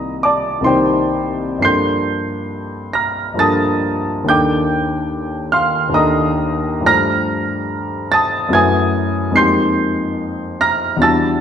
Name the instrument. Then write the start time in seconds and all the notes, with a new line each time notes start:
grand piano
Already playing: C2 D#3 A#3 D#4 G4 D#5 A#5 D#6
0.23 D5 A5 D6
0.61 C2 D#3 A#3 C6
0.65 D#4 G4 C5 G5
1.59 G2 F3 A#3 D4 C7
1.63 A4 C6 G6
2.93 A#5 F6 A#6
3.34 G2 F3 A#3
3.38 D4 A4 A5 D#6 A6
4.24 D#2 D#3 A#3 D4
4.28 A4 G5 D6 G6
5.52 F5 C6 F6
5.89 D#2 D#3 A#3 D4
5.94 A4 D#5 A#5 D#6
6.81 G2 F3 A3
6.85 D4 C5 A#5 F6 A#6
8.12 A5 D#6 A6
8.49 F#2 F#3 A3 E4
8.53 B4 G#5 D#6 G#6
9.31 F2 G#3 A#3 D#4
9.36 G4 C6 G6 C7
10.61 A#5 F6 A#6
10.97 E2 G3 D4
11.01 E4 F#4 A5 E6 A6